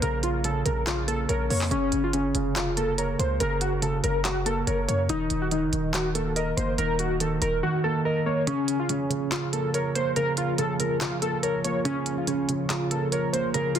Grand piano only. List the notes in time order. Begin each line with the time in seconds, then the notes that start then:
Already playing: C#3 A#3 C#5
0.02 C#3
0.44 C#3
0.66 C#3
0.87 C#3
1.07 A#3
1.29 C#5
1.50 A#3
1.71 C#3
2.14 C#3
2.35 C#3
2.56 C#3
2.77 A#3
2.98 C#5
3.20 A#3
3.40 C#3
3.82 C#3
4.04 C#3
4.25 C#3
4.45 A#3
4.67 C#5
4.88 A#3
5.10 D#3
5.51 D#3
5.73 D#3
6.15 A#3
6.36 D#5
6.57 A#3
6.78 D#3
7.20 D#3
7.41 D#3
7.63 D#3
7.85 A#3
8.06 D#5
8.26 A#3
8.47 C#3
8.90 C#3
9.10 C#3
9.31 C#3
9.53 A#3
9.74 C#5
9.96 A#3
10.16 C#3
10.58 C#3
10.80 C#3
11.01 C#3
11.22 A#3
11.43 C#5
11.65 A#3
11.85 C#3
12.27 C#3
12.49 C#3
12.70 C#3
12.91 A#3
13.12 C#5
13.34 A#3
13.55 C#3